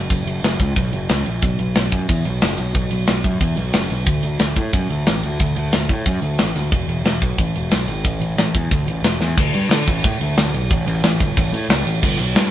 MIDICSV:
0, 0, Header, 1, 3, 480
1, 0, Start_track
1, 0, Tempo, 331492
1, 139, Time_signature, 4, 2, 24, 8
1, 18113, End_track
2, 0, Start_track
2, 0, Title_t, "Picked electric bass"
2, 0, Program_c, 0, 34
2, 147, Note_on_c, 0, 30, 92
2, 344, Note_off_c, 0, 30, 0
2, 371, Note_on_c, 0, 30, 85
2, 575, Note_off_c, 0, 30, 0
2, 623, Note_on_c, 0, 30, 69
2, 822, Note_off_c, 0, 30, 0
2, 860, Note_on_c, 0, 37, 83
2, 1060, Note_off_c, 0, 37, 0
2, 1105, Note_on_c, 0, 35, 87
2, 1303, Note_off_c, 0, 35, 0
2, 1341, Note_on_c, 0, 30, 79
2, 1540, Note_off_c, 0, 30, 0
2, 1590, Note_on_c, 0, 37, 92
2, 1786, Note_off_c, 0, 37, 0
2, 1834, Note_on_c, 0, 34, 91
2, 2028, Note_off_c, 0, 34, 0
2, 2064, Note_on_c, 0, 35, 94
2, 2262, Note_off_c, 0, 35, 0
2, 2314, Note_on_c, 0, 35, 81
2, 2508, Note_off_c, 0, 35, 0
2, 2550, Note_on_c, 0, 35, 77
2, 2746, Note_off_c, 0, 35, 0
2, 2778, Note_on_c, 0, 42, 77
2, 2979, Note_off_c, 0, 42, 0
2, 3021, Note_on_c, 0, 40, 86
2, 3220, Note_off_c, 0, 40, 0
2, 3272, Note_on_c, 0, 35, 78
2, 3467, Note_off_c, 0, 35, 0
2, 3515, Note_on_c, 0, 30, 83
2, 3709, Note_off_c, 0, 30, 0
2, 3740, Note_on_c, 0, 35, 85
2, 3940, Note_off_c, 0, 35, 0
2, 3974, Note_on_c, 0, 35, 91
2, 4176, Note_off_c, 0, 35, 0
2, 4223, Note_on_c, 0, 35, 86
2, 4421, Note_off_c, 0, 35, 0
2, 4458, Note_on_c, 0, 35, 82
2, 4658, Note_off_c, 0, 35, 0
2, 4699, Note_on_c, 0, 42, 79
2, 4899, Note_off_c, 0, 42, 0
2, 4933, Note_on_c, 0, 40, 82
2, 5135, Note_off_c, 0, 40, 0
2, 5160, Note_on_c, 0, 35, 76
2, 5367, Note_off_c, 0, 35, 0
2, 5410, Note_on_c, 0, 30, 79
2, 5613, Note_off_c, 0, 30, 0
2, 5655, Note_on_c, 0, 35, 89
2, 5881, Note_off_c, 0, 35, 0
2, 5881, Note_on_c, 0, 38, 87
2, 6088, Note_off_c, 0, 38, 0
2, 6131, Note_on_c, 0, 38, 76
2, 6333, Note_off_c, 0, 38, 0
2, 6363, Note_on_c, 0, 38, 72
2, 6569, Note_off_c, 0, 38, 0
2, 6608, Note_on_c, 0, 45, 76
2, 6812, Note_off_c, 0, 45, 0
2, 6851, Note_on_c, 0, 42, 82
2, 7053, Note_off_c, 0, 42, 0
2, 7091, Note_on_c, 0, 38, 81
2, 7294, Note_off_c, 0, 38, 0
2, 7338, Note_on_c, 0, 33, 82
2, 7538, Note_off_c, 0, 33, 0
2, 7576, Note_on_c, 0, 38, 81
2, 7777, Note_off_c, 0, 38, 0
2, 7814, Note_on_c, 0, 38, 86
2, 8015, Note_off_c, 0, 38, 0
2, 8052, Note_on_c, 0, 38, 89
2, 8255, Note_off_c, 0, 38, 0
2, 8302, Note_on_c, 0, 38, 81
2, 8500, Note_off_c, 0, 38, 0
2, 8532, Note_on_c, 0, 45, 75
2, 8735, Note_off_c, 0, 45, 0
2, 8775, Note_on_c, 0, 42, 83
2, 8977, Note_off_c, 0, 42, 0
2, 9006, Note_on_c, 0, 38, 78
2, 9211, Note_off_c, 0, 38, 0
2, 9260, Note_on_c, 0, 33, 79
2, 9459, Note_off_c, 0, 33, 0
2, 9489, Note_on_c, 0, 38, 93
2, 9693, Note_off_c, 0, 38, 0
2, 9727, Note_on_c, 0, 28, 87
2, 9932, Note_off_c, 0, 28, 0
2, 9957, Note_on_c, 0, 28, 89
2, 10166, Note_off_c, 0, 28, 0
2, 10190, Note_on_c, 0, 28, 78
2, 10402, Note_off_c, 0, 28, 0
2, 10449, Note_on_c, 0, 35, 69
2, 10654, Note_off_c, 0, 35, 0
2, 10686, Note_on_c, 0, 33, 81
2, 10892, Note_off_c, 0, 33, 0
2, 10942, Note_on_c, 0, 28, 81
2, 11141, Note_off_c, 0, 28, 0
2, 11171, Note_on_c, 0, 35, 96
2, 11375, Note_off_c, 0, 35, 0
2, 11402, Note_on_c, 0, 32, 98
2, 11651, Note_off_c, 0, 32, 0
2, 11651, Note_on_c, 0, 33, 100
2, 11855, Note_off_c, 0, 33, 0
2, 11870, Note_on_c, 0, 33, 84
2, 12083, Note_off_c, 0, 33, 0
2, 12120, Note_on_c, 0, 33, 81
2, 12329, Note_off_c, 0, 33, 0
2, 12371, Note_on_c, 0, 40, 74
2, 12576, Note_off_c, 0, 40, 0
2, 12616, Note_on_c, 0, 38, 93
2, 12818, Note_off_c, 0, 38, 0
2, 12836, Note_on_c, 0, 33, 83
2, 13047, Note_off_c, 0, 33, 0
2, 13072, Note_on_c, 0, 28, 83
2, 13285, Note_off_c, 0, 28, 0
2, 13317, Note_on_c, 0, 40, 85
2, 13528, Note_off_c, 0, 40, 0
2, 13576, Note_on_c, 0, 38, 94
2, 13778, Note_off_c, 0, 38, 0
2, 13810, Note_on_c, 0, 43, 92
2, 14015, Note_off_c, 0, 43, 0
2, 14055, Note_on_c, 0, 50, 80
2, 14258, Note_off_c, 0, 50, 0
2, 14298, Note_on_c, 0, 33, 80
2, 14500, Note_off_c, 0, 33, 0
2, 14543, Note_on_c, 0, 45, 86
2, 14742, Note_off_c, 0, 45, 0
2, 14773, Note_on_c, 0, 38, 87
2, 14977, Note_off_c, 0, 38, 0
2, 15022, Note_on_c, 0, 38, 102
2, 15222, Note_off_c, 0, 38, 0
2, 15264, Note_on_c, 0, 35, 97
2, 15463, Note_off_c, 0, 35, 0
2, 15504, Note_on_c, 0, 33, 100
2, 15703, Note_off_c, 0, 33, 0
2, 15737, Note_on_c, 0, 33, 101
2, 15938, Note_off_c, 0, 33, 0
2, 15982, Note_on_c, 0, 33, 87
2, 16181, Note_off_c, 0, 33, 0
2, 16223, Note_on_c, 0, 31, 76
2, 16422, Note_off_c, 0, 31, 0
2, 16468, Note_on_c, 0, 33, 103
2, 16664, Note_off_c, 0, 33, 0
2, 16687, Note_on_c, 0, 45, 91
2, 16892, Note_off_c, 0, 45, 0
2, 16925, Note_on_c, 0, 37, 90
2, 17131, Note_off_c, 0, 37, 0
2, 17167, Note_on_c, 0, 33, 93
2, 17372, Note_off_c, 0, 33, 0
2, 17414, Note_on_c, 0, 31, 99
2, 17616, Note_off_c, 0, 31, 0
2, 17644, Note_on_c, 0, 35, 91
2, 17850, Note_off_c, 0, 35, 0
2, 17885, Note_on_c, 0, 43, 96
2, 18090, Note_off_c, 0, 43, 0
2, 18113, End_track
3, 0, Start_track
3, 0, Title_t, "Drums"
3, 147, Note_on_c, 9, 36, 100
3, 151, Note_on_c, 9, 51, 94
3, 292, Note_off_c, 9, 36, 0
3, 296, Note_off_c, 9, 51, 0
3, 394, Note_on_c, 9, 51, 70
3, 539, Note_off_c, 9, 51, 0
3, 637, Note_on_c, 9, 51, 93
3, 643, Note_on_c, 9, 38, 94
3, 782, Note_off_c, 9, 51, 0
3, 788, Note_off_c, 9, 38, 0
3, 865, Note_on_c, 9, 36, 81
3, 869, Note_on_c, 9, 51, 64
3, 1010, Note_off_c, 9, 36, 0
3, 1013, Note_off_c, 9, 51, 0
3, 1103, Note_on_c, 9, 51, 81
3, 1105, Note_on_c, 9, 36, 102
3, 1248, Note_off_c, 9, 51, 0
3, 1250, Note_off_c, 9, 36, 0
3, 1343, Note_on_c, 9, 51, 62
3, 1488, Note_off_c, 9, 51, 0
3, 1582, Note_on_c, 9, 51, 90
3, 1588, Note_on_c, 9, 38, 103
3, 1727, Note_off_c, 9, 51, 0
3, 1732, Note_off_c, 9, 38, 0
3, 1820, Note_on_c, 9, 51, 64
3, 1965, Note_off_c, 9, 51, 0
3, 2057, Note_on_c, 9, 51, 85
3, 2064, Note_on_c, 9, 36, 111
3, 2202, Note_off_c, 9, 51, 0
3, 2209, Note_off_c, 9, 36, 0
3, 2298, Note_on_c, 9, 51, 64
3, 2443, Note_off_c, 9, 51, 0
3, 2538, Note_on_c, 9, 51, 77
3, 2544, Note_on_c, 9, 38, 106
3, 2683, Note_off_c, 9, 51, 0
3, 2689, Note_off_c, 9, 38, 0
3, 2775, Note_on_c, 9, 51, 60
3, 2784, Note_on_c, 9, 36, 71
3, 2920, Note_off_c, 9, 51, 0
3, 2929, Note_off_c, 9, 36, 0
3, 3027, Note_on_c, 9, 36, 103
3, 3029, Note_on_c, 9, 51, 89
3, 3172, Note_off_c, 9, 36, 0
3, 3174, Note_off_c, 9, 51, 0
3, 3260, Note_on_c, 9, 51, 59
3, 3405, Note_off_c, 9, 51, 0
3, 3501, Note_on_c, 9, 51, 88
3, 3506, Note_on_c, 9, 38, 115
3, 3645, Note_off_c, 9, 51, 0
3, 3651, Note_off_c, 9, 38, 0
3, 3734, Note_on_c, 9, 51, 64
3, 3879, Note_off_c, 9, 51, 0
3, 3976, Note_on_c, 9, 51, 92
3, 3980, Note_on_c, 9, 36, 98
3, 4120, Note_off_c, 9, 51, 0
3, 4125, Note_off_c, 9, 36, 0
3, 4208, Note_on_c, 9, 51, 74
3, 4353, Note_off_c, 9, 51, 0
3, 4450, Note_on_c, 9, 51, 90
3, 4455, Note_on_c, 9, 38, 112
3, 4594, Note_off_c, 9, 51, 0
3, 4600, Note_off_c, 9, 38, 0
3, 4696, Note_on_c, 9, 36, 72
3, 4699, Note_on_c, 9, 51, 62
3, 4841, Note_off_c, 9, 36, 0
3, 4844, Note_off_c, 9, 51, 0
3, 4934, Note_on_c, 9, 36, 106
3, 4937, Note_on_c, 9, 51, 86
3, 5079, Note_off_c, 9, 36, 0
3, 5082, Note_off_c, 9, 51, 0
3, 5169, Note_on_c, 9, 51, 61
3, 5313, Note_off_c, 9, 51, 0
3, 5407, Note_on_c, 9, 51, 97
3, 5412, Note_on_c, 9, 38, 115
3, 5551, Note_off_c, 9, 51, 0
3, 5557, Note_off_c, 9, 38, 0
3, 5649, Note_on_c, 9, 51, 63
3, 5793, Note_off_c, 9, 51, 0
3, 5882, Note_on_c, 9, 51, 84
3, 5889, Note_on_c, 9, 36, 109
3, 6027, Note_off_c, 9, 51, 0
3, 6034, Note_off_c, 9, 36, 0
3, 6121, Note_on_c, 9, 51, 68
3, 6266, Note_off_c, 9, 51, 0
3, 6362, Note_on_c, 9, 51, 77
3, 6368, Note_on_c, 9, 38, 97
3, 6507, Note_off_c, 9, 51, 0
3, 6513, Note_off_c, 9, 38, 0
3, 6602, Note_on_c, 9, 51, 57
3, 6611, Note_on_c, 9, 36, 73
3, 6747, Note_off_c, 9, 51, 0
3, 6755, Note_off_c, 9, 36, 0
3, 6850, Note_on_c, 9, 51, 77
3, 6855, Note_on_c, 9, 36, 97
3, 6995, Note_off_c, 9, 51, 0
3, 7000, Note_off_c, 9, 36, 0
3, 7096, Note_on_c, 9, 51, 57
3, 7241, Note_off_c, 9, 51, 0
3, 7334, Note_on_c, 9, 51, 86
3, 7339, Note_on_c, 9, 38, 118
3, 7478, Note_off_c, 9, 51, 0
3, 7484, Note_off_c, 9, 38, 0
3, 7576, Note_on_c, 9, 51, 61
3, 7720, Note_off_c, 9, 51, 0
3, 7810, Note_on_c, 9, 51, 86
3, 7819, Note_on_c, 9, 36, 96
3, 7955, Note_off_c, 9, 51, 0
3, 7964, Note_off_c, 9, 36, 0
3, 8051, Note_on_c, 9, 51, 68
3, 8196, Note_off_c, 9, 51, 0
3, 8290, Note_on_c, 9, 51, 82
3, 8296, Note_on_c, 9, 38, 105
3, 8435, Note_off_c, 9, 51, 0
3, 8441, Note_off_c, 9, 38, 0
3, 8528, Note_on_c, 9, 51, 57
3, 8533, Note_on_c, 9, 36, 79
3, 8673, Note_off_c, 9, 51, 0
3, 8678, Note_off_c, 9, 36, 0
3, 8772, Note_on_c, 9, 51, 89
3, 8774, Note_on_c, 9, 36, 102
3, 8917, Note_off_c, 9, 51, 0
3, 8919, Note_off_c, 9, 36, 0
3, 9009, Note_on_c, 9, 51, 60
3, 9154, Note_off_c, 9, 51, 0
3, 9246, Note_on_c, 9, 51, 100
3, 9252, Note_on_c, 9, 38, 123
3, 9391, Note_off_c, 9, 51, 0
3, 9396, Note_off_c, 9, 38, 0
3, 9491, Note_on_c, 9, 51, 61
3, 9497, Note_on_c, 9, 38, 28
3, 9636, Note_off_c, 9, 51, 0
3, 9642, Note_off_c, 9, 38, 0
3, 9731, Note_on_c, 9, 51, 88
3, 9732, Note_on_c, 9, 36, 100
3, 9875, Note_off_c, 9, 51, 0
3, 9877, Note_off_c, 9, 36, 0
3, 9973, Note_on_c, 9, 51, 61
3, 10118, Note_off_c, 9, 51, 0
3, 10212, Note_on_c, 9, 51, 91
3, 10218, Note_on_c, 9, 38, 101
3, 10357, Note_off_c, 9, 51, 0
3, 10363, Note_off_c, 9, 38, 0
3, 10453, Note_on_c, 9, 36, 78
3, 10456, Note_on_c, 9, 51, 55
3, 10598, Note_off_c, 9, 36, 0
3, 10601, Note_off_c, 9, 51, 0
3, 10690, Note_on_c, 9, 51, 83
3, 10693, Note_on_c, 9, 36, 107
3, 10835, Note_off_c, 9, 51, 0
3, 10838, Note_off_c, 9, 36, 0
3, 10938, Note_on_c, 9, 51, 58
3, 11083, Note_off_c, 9, 51, 0
3, 11168, Note_on_c, 9, 51, 95
3, 11173, Note_on_c, 9, 38, 102
3, 11312, Note_off_c, 9, 51, 0
3, 11318, Note_off_c, 9, 38, 0
3, 11409, Note_on_c, 9, 51, 59
3, 11554, Note_off_c, 9, 51, 0
3, 11649, Note_on_c, 9, 51, 75
3, 11653, Note_on_c, 9, 36, 101
3, 11794, Note_off_c, 9, 51, 0
3, 11797, Note_off_c, 9, 36, 0
3, 11893, Note_on_c, 9, 51, 58
3, 12038, Note_off_c, 9, 51, 0
3, 12135, Note_on_c, 9, 51, 88
3, 12141, Note_on_c, 9, 38, 109
3, 12280, Note_off_c, 9, 51, 0
3, 12285, Note_off_c, 9, 38, 0
3, 12376, Note_on_c, 9, 36, 78
3, 12378, Note_on_c, 9, 51, 59
3, 12520, Note_off_c, 9, 36, 0
3, 12523, Note_off_c, 9, 51, 0
3, 12616, Note_on_c, 9, 51, 84
3, 12617, Note_on_c, 9, 36, 110
3, 12761, Note_off_c, 9, 51, 0
3, 12762, Note_off_c, 9, 36, 0
3, 12856, Note_on_c, 9, 51, 70
3, 13001, Note_off_c, 9, 51, 0
3, 13090, Note_on_c, 9, 51, 97
3, 13096, Note_on_c, 9, 38, 103
3, 13235, Note_off_c, 9, 51, 0
3, 13241, Note_off_c, 9, 38, 0
3, 13331, Note_on_c, 9, 38, 53
3, 13475, Note_off_c, 9, 38, 0
3, 13572, Note_on_c, 9, 49, 107
3, 13576, Note_on_c, 9, 36, 122
3, 13716, Note_off_c, 9, 49, 0
3, 13721, Note_off_c, 9, 36, 0
3, 13811, Note_on_c, 9, 51, 77
3, 13956, Note_off_c, 9, 51, 0
3, 14058, Note_on_c, 9, 51, 113
3, 14064, Note_on_c, 9, 38, 111
3, 14203, Note_off_c, 9, 51, 0
3, 14208, Note_off_c, 9, 38, 0
3, 14302, Note_on_c, 9, 36, 83
3, 14305, Note_on_c, 9, 51, 69
3, 14447, Note_off_c, 9, 36, 0
3, 14450, Note_off_c, 9, 51, 0
3, 14541, Note_on_c, 9, 36, 105
3, 14543, Note_on_c, 9, 51, 102
3, 14686, Note_off_c, 9, 36, 0
3, 14688, Note_off_c, 9, 51, 0
3, 14778, Note_on_c, 9, 51, 68
3, 14923, Note_off_c, 9, 51, 0
3, 15020, Note_on_c, 9, 51, 103
3, 15026, Note_on_c, 9, 38, 114
3, 15165, Note_off_c, 9, 51, 0
3, 15171, Note_off_c, 9, 38, 0
3, 15267, Note_on_c, 9, 51, 72
3, 15411, Note_off_c, 9, 51, 0
3, 15504, Note_on_c, 9, 36, 124
3, 15504, Note_on_c, 9, 51, 101
3, 15649, Note_off_c, 9, 36, 0
3, 15649, Note_off_c, 9, 51, 0
3, 15746, Note_on_c, 9, 51, 81
3, 15891, Note_off_c, 9, 51, 0
3, 15978, Note_on_c, 9, 51, 102
3, 15984, Note_on_c, 9, 38, 111
3, 16123, Note_off_c, 9, 51, 0
3, 16129, Note_off_c, 9, 38, 0
3, 16224, Note_on_c, 9, 36, 80
3, 16225, Note_on_c, 9, 51, 76
3, 16369, Note_off_c, 9, 36, 0
3, 16370, Note_off_c, 9, 51, 0
3, 16466, Note_on_c, 9, 36, 113
3, 16467, Note_on_c, 9, 51, 110
3, 16610, Note_off_c, 9, 36, 0
3, 16612, Note_off_c, 9, 51, 0
3, 16708, Note_on_c, 9, 51, 75
3, 16853, Note_off_c, 9, 51, 0
3, 16939, Note_on_c, 9, 51, 122
3, 16944, Note_on_c, 9, 38, 127
3, 17083, Note_off_c, 9, 51, 0
3, 17089, Note_off_c, 9, 38, 0
3, 17183, Note_on_c, 9, 51, 87
3, 17328, Note_off_c, 9, 51, 0
3, 17416, Note_on_c, 9, 57, 103
3, 17419, Note_on_c, 9, 36, 105
3, 17561, Note_off_c, 9, 57, 0
3, 17564, Note_off_c, 9, 36, 0
3, 17652, Note_on_c, 9, 51, 85
3, 17796, Note_off_c, 9, 51, 0
3, 17893, Note_on_c, 9, 51, 109
3, 17899, Note_on_c, 9, 38, 108
3, 18038, Note_off_c, 9, 51, 0
3, 18044, Note_off_c, 9, 38, 0
3, 18113, End_track
0, 0, End_of_file